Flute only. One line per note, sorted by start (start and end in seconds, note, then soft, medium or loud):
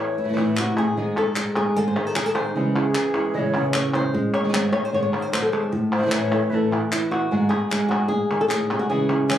0.00 0.48 C#5 medium
2.75 3.36 G#4 medium
3.35 3.40 D#5 medium
3.39 3.64 C#5 medium
5.92 6.13 C5 medium
6.12 6.52 C#5 loud
6.50 6.56 B4 medium
6.55 6.80 A4 medium
9.30 9.38 C#5 loud